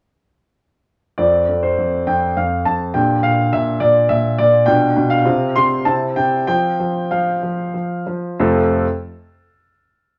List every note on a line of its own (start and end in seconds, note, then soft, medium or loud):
1.18 1.47 F2 soft
1.18 2.90 C4 soft
1.18 2.90 F4 soft
1.18 1.63 D5 medium
1.49 1.77 F2 soft
1.63 2.07 C5 medium
1.78 2.06 F2 soft
2.07 2.35 F2 soft
2.07 2.36 G5 medium
2.37 2.64 F2 soft
2.37 2.66 F5 medium
2.65 2.94 F2 soft
2.65 2.94 A5 medium
2.94 3.22 A#2 soft
2.94 4.63 D4 soft
2.94 4.63 G4 soft
2.94 3.23 G5 medium
3.23 3.52 A#2 soft
3.23 3.52 F5 medium
3.53 3.79 A#2 soft
3.53 3.81 E5 medium
3.80 4.09 A#2 medium
3.80 4.09 D5 medium
4.09 4.38 A#2 soft
4.09 4.38 E5 medium
4.38 4.67 A#2 medium
4.38 4.67 D5 medium
4.66 4.95 B2 medium
4.66 5.21 D4 soft
4.66 5.21 F4 soft
4.66 5.10 G5 medium
4.97 5.25 B2 medium
5.10 5.55 F5 medium
5.25 5.54 C3 medium
5.25 5.81 C4 soft
5.25 5.81 F4 soft
5.56 5.84 C3 medium
5.56 5.86 C6 loud
5.85 6.15 C3 medium
5.85 6.44 C4 soft
5.85 6.44 E4 soft
5.85 6.16 A5 medium
6.16 6.47 C3 soft
6.16 6.46 G5 medium
6.47 6.78 F3 soft
6.47 8.35 C4 soft
6.47 8.35 F4 soft
6.47 7.10 G5 medium
6.80 7.10 F3 soft
7.11 7.42 F3 soft
7.11 8.06 F5 medium
7.43 7.73 F3 soft
7.74 8.05 F3 soft
8.07 8.38 F3 soft
8.40 8.74 F2 medium
8.40 8.74 C3 medium
8.40 8.74 A3 medium
8.40 8.74 C4 medium
8.40 8.74 F4 medium
8.40 8.75 A4 medium